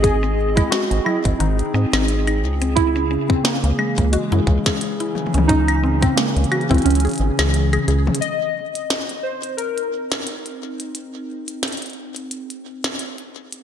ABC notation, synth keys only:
X:1
M:4/4
L:1/16
Q:"Swing 16ths" 1/4=88
K:G#phr
V:1 name="Synth keys"
G3 E F2 E2 D6 z2 | E3 ^B, ^A,4 G,6 z2 | D3 ^B, ^A,3 B, C6 z2 | d6 ^B2 ^A6 z2 |
z16 |]